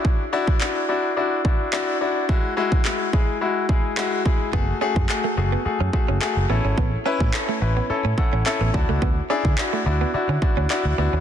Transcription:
<<
  \new Staff \with { instrumentName = "Grand piano" } { \time 4/4 \key d \lydian \tempo 4 = 107 << { r1 | r1 | r1 | r2 r8 fis''8 e''8 a''8 |
r1 | } \\ { <d' e' fis'>8 <d' e' fis'>8 <d' e' fis'>8 <d' e' fis'>8 <d' e' fis'>8 <d' e' fis'>8 <d' e' fis'>8 <d' e' fis'>8 | <gis e' fis'>8 <gis e' fis'>8 <gis e' fis'>8 <gis e' gis'>8 <gis e' fis'>8 <gis e' gis'>8 <gis e' fis'>8 <gis e' gis'>8 | <a fis' gis'>8 <a fis' gis'>8 <a fis' gis'>8 <a fis' gis'>8 <a fis' gis'>8 <a fis' gis'>8 <a fis' gis'>8 <cis' e' a'>8~ | <cis' e' a'>8 <cis' e' b'>8 <cis' e' a'>8 <cis' e' b'>8 <cis' e' a'>8 <cis' e' a'>8 <cis' e' a'>8 <d' e' fis'>8~ |
<d' e' fis'>8 <d' e' gis'>8 <d' e' fis'>8 <d' e' fis'>8 <d' e' fis'>8 <d' e' fis'>8 <d' e' fis'>8 <d' e' fis'>8 | } >> }
  \new Staff \with { instrumentName = "Clean electric guitar" } { \time 4/4 \key d \lydian r1 | r1 | b16 r16 cis'16 r8 a16 r16 b16 r16 cis'16 r16 cis'16 r8 b16 cis'16 | b16 r16 cis'16 r8 a16 r16 b16 r16 cis'16 r16 cis'16 r16 b16 r16 a16 |
b16 r16 cis'16 r8 a16 r16 b16 r16 cis'16 r16 cis'16 r8 b16 cis'16 | }
  \new Staff \with { instrumentName = "Fingered electric bass" } { \clef bass \time 4/4 \key d \lydian r1 | r1 | fis,,8 r16 fis,16 r8 fis,,8 r16 fis,16 r16 fis,,16 r16 fis,,16 a,,16 gis,,16 | a,,8 r16 a,16 r8 a,,8 r16 a,16 r16 a,,16 r16 a,,16 d,16 cis,16 |
d,8 r16 d16 r8 d,8 r16 d16 r16 d,16 r16 d,16 d,16 dis,16 | }
  \new DrumStaff \with { instrumentName = "Drums" } \drummode { \time 4/4 bd8. bd16 hc4 r8 bd8 hc4 | bd8. bd16 hc8 bd8 r8 bd8 hc8 bd8 | bd8. bd16 hc4 r8 bd8 hc4 | bd8. bd16 hc4 r8 bd8 hc8 bd8 |
bd8. bd16 hc4 r8 bd8 hc4 | }
>>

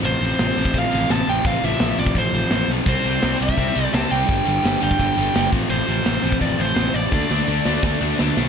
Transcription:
<<
  \new Staff \with { instrumentName = "Overdriven electric guitar" } { \time 4/4 \key f \lydian \tempo 4 = 169 c''2 f''4 a''8 g''8 | f''8 e''4 d''8 c''4. r8 | c''4. e''4. a''8 g''8~ | g''4. g''2 r8 |
c''2 d''8 c''8 c''8 d''8~ | d''2. r4 | }
  \new Staff \with { instrumentName = "Distorted electric guitar" } { \clef bass \time 4/4 \key f \lydian <f, c f>8 <f, c f>8 <f, c f>8 <f, c f>8 <f, c f>8 <f, c f>8 <f, c f>8 <f, c f>8 | <f, c f>8 <f, c f>8 <f, c f>8 <f, c f>8 <f, c f>8 <f, c f>8 <f, c f>8 <f, c f>8 | <c g c'>8 <c g c'>8 <c g c'>8 <c g c'>8 <c g c'>8 <c g c'>8 <c g c'>8 <c g c'>8 | <g, d g>8 <g, d g>8 <g, d g>8 <g, d g>8 <g, d g>8 <g, d g>8 <g, d g>8 <f, c f>8 |
<f, c f>8 <f, c f>8 <f, c f>8 <f, c f>8 <f, c f>8 <f, c f>8 <f, c f>8 <f, c f>8 | <d a d'>8 <d a d'>8 <d a d'>8 <d a d'>8 <d a d'>8 <d a d'>8 <d a d'>8 <d a d'>8 | }
  \new Staff \with { instrumentName = "Picked electric bass" } { \clef bass \time 4/4 \key f \lydian a,,8 a,,8 a,,8 a,,8 a,,8 a,,8 a,,8 a,,8 | a,,8 a,,8 a,,8 a,,8 a,,8 a,,8 a,,8 b,,8 | c,8 c,8 c,8 c,8 c,8 c,8 c,8 c,8 | g,,8 g,,8 g,,8 g,,8 g,,8 g,,8 g,,8 a,,8 |
a,,8 a,,8 a,,8 a,,8 a,,8 a,,8 a,,8 a,,8 | d,8 d,8 d,8 d,8 d,8 d,8 d,8 b,,8 | }
  \new DrumStaff \with { instrumentName = "Drums" } \drummode { \time 4/4 hho4 <hho sn>8. bd16 <hho bd>4 <hho sn>4 | <hho bd>4 <hho sn>8. bd16 <hho bd>4 <hho sn>4 | <cymc bd>4 <hho sn>8. bd16 <hho bd>4 <hho sn>4 | <hho bd>4 <hho sn>8. bd16 <hho bd>4 <hho sn>8 bd8 |
hho4 <hho sn>8. bd16 <hho bd>4 <hho sn>4 | <bd sn>8 sn8 r8 sn8 <bd sn>4 sn8 sn8 | }
>>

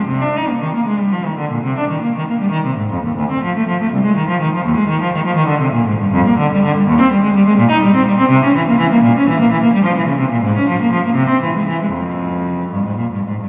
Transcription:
\new Staff \with { instrumentName = "Cello" } { \clef bass \time 6/8 \key c \minor \tempo 4. = 81 c16 d'16 ees'16 bes16 ees16 bes16 aes16 g16 f16 ees16 d16 bes,16 | c16 d'16 ees16 bes16 ees16 bes16 g16 ees16 c16 aes,16 f,16 ees,16 | d,16 c'16 f16 a16 f16 a16 c,16 aes16 ees16 f16 ees16 f16 | ees,16 aes16 ees16 f16 ees16 f16 ees16 d16 c16 bes,16 aes,16 g,16 |
f,16 bes16 d16 g16 d16 g16 ees,16 c'16 g16 aes16 g16 aes16 | \key f \minor bes,16 ees'16 g16 c'16 g16 c'16 c16 des'16 e16 bes16 e16 bes16 | bes,16 des'16 e16 bes16 e16 bes16 g16 f16 e16 des16 c16 bes,16 | aes,16 des'16 f16 bes16 f16 bes16 c16 c'16 e16 aes16 e16 aes16 |
f,4. g,16 aes,16 bes,16 g,16 aes,16 g,16 | }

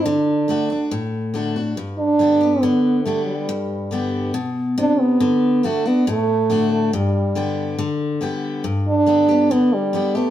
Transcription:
<<
  \new Staff \with { instrumentName = "French horn" } { \time 4/4 \key g \major \tempo 4 = 140 d'2 r2 | r8 d'4. b4 a8 g8~ | g4. r4. d'8 b8~ | b4 a8 b8 a4. a8 |
g2 r2 | r8 d'4. b8 g4 a8 | }
  \new Staff \with { instrumentName = "Steel-string acoustic guitar" } { \time 4/4 \key g \major << { r4 <d a d' fis'>8 <d' fis'>8 r4 <d a d' fis'>8 <d' fis'>8 | r4 <d g b g'>8 <b g'>8 r4 <d g b g'>4 | r4 <d g b g'>4 r2 | r4 <d a d' fis'>8 <d' fis'>8 r4 <d a d' fis'>4 |
r4 <d g b g'>4 r4 <d g b g'>4 | r4 <d g b g'>8 <b g'>8 r4 <d g b g'>8 <b g'>8 | } \\ { d2 a,2 | g,2 d2 | g,2 b,4 c4 | d2 a,2 |
g,2 d2 | g,2 d2 | } >> }
>>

